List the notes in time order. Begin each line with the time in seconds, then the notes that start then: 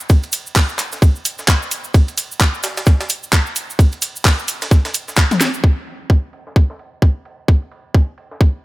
0.00 cabasa
0.09 kick, ride, cabasa
0.23 ride, cabasa
0.32 open hi-hat, ride, cabasa
0.47 cabasa
0.56 kick, snare, clap, open hi-hat, cabasa
0.69 cabasa
0.79 clap, open hi-hat, ride, cabasa
0.92 snare, cabasa
1.02 kick, ride, cabasa
1.16 cabasa
1.25 open hi-hat, ride, cabasa
1.39 snare, cabasa
1.48 kick, snare, clap, ride, cabasa
1.62 cabasa
1.71 open hi-hat, ride, cabasa
1.84 cabasa
1.94 kick, ride, cabasa
2.08 ride, cabasa
2.18 open hi-hat, ride, cabasa
2.32 cabasa
2.40 kick, snare, clap, ride, cabasa
2.54 cabasa
2.63 snare, open hi-hat, ride, cabasa
2.77 snare, ride, cabasa
2.86 kick, snare, ride, cabasa
3.01 snare, ride, cabasa
3.09 open hi-hat, ride, cabasa
3.23 cabasa
3.33 kick, snare, clap, ride, cabasa
3.46 cabasa
3.56 open hi-hat, ride, cabasa
3.70 cabasa
3.79 kick, ride, cabasa
3.92 ride, cabasa
4.02 open hi-hat, ride, cabasa
4.16 cabasa
4.25 kick, snare, clap, open hi-hat, cabasa
4.39 cabasa
4.48 open hi-hat, ride, cabasa
4.62 snare, ride, cabasa
4.71 kick, snare, ride, cabasa
4.85 snare, ride, cabasa
4.94 open hi-hat, ride, cabasa
5.08 snare, cabasa
5.17 kick, snare, clap, ride, cabasa
5.31 snare, high tom, ride, cabasa
5.41 snare, open hi-hat, ride, cabasa
5.54 cabasa
5.64 kick, ride
5.77 ride
5.87 ride
6.10 kick, ride
6.33 ride
6.47 snare
6.56 kick, ride
6.70 snare
6.79 ride
7.02 kick, ride
7.25 ride
7.48 kick, ride
7.62 ride
7.71 ride
7.95 kick, open hi-hat
8.18 ride
8.31 snare
8.41 kick, ride